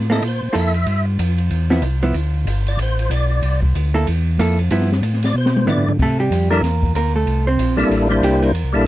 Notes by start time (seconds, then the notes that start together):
Already playing: A2
0.01 snare
0.10 A#3 E4 A4 D#5, snare
0.22 A#2, ride
0.28 C5
0.42 A#2
0.53 F2 A#3 E4 A4, hi-hat pedal, ride
0.59 E5
0.74 ride
0.86 G2, ride
1.19 F2, hi-hat pedal, ride
1.38 ride
1.50 E2, ride
1.70 F3 B3 E4, snare
1.82 C2, hi-hat pedal, ride
2.02 F3 B3 E4, ride
2.14 D2, ride
2.45 G1, hi-hat pedal, ride
2.66 D5, ride
2.77 A1, ride
2.82 C5
2.99 ride
3.10 B1 D5, hi-hat pedal, ride
3.42 C2, ride
3.62 kick
3.75 D2, hi-hat pedal, ride
3.94 A#3 E4 A4, ride
4.07 E2, ride
4.38 F2 A#3 E4 A4, hi-hat pedal, ride
4.59 ride
4.70 G2 F3 B3 E4, ride
4.81 snare
4.92 snare
5.02 A2, hi-hat pedal, ride
5.14 snare
5.22 D5, snare, ride
5.34 B2 C5
5.46 snare
5.57 high tom
5.66 D3 F3 B3 E4 D5, floor tom, hi-hat pedal
5.77 floor tom
5.88 floor tom
5.99 C3 A3 A4, kick, crash
6.20 G3 G4
6.30 F2, hi-hat pedal, ride
6.50 G3 A#3 D4 E4 A4 A#4
6.62 E2, snare, ride
6.83 kick
6.94 D2 A#3 A#4, hi-hat pedal, ride
7.16 A3 A4
7.26 C2, ride
7.47 C4 C5
7.58 A#1, hi-hat pedal, ride
7.77 A#1 G3 A#3 D4 E4 A4, ride
7.89 A1, ride
8.09 G3 A#3 D4 E4 C5
8.22 C2 G4, hi-hat pedal, ride
8.42 A#4, ride
8.53 E2, ride
8.64 C2
8.73 A#1 G3 A#3 D4 E4 A4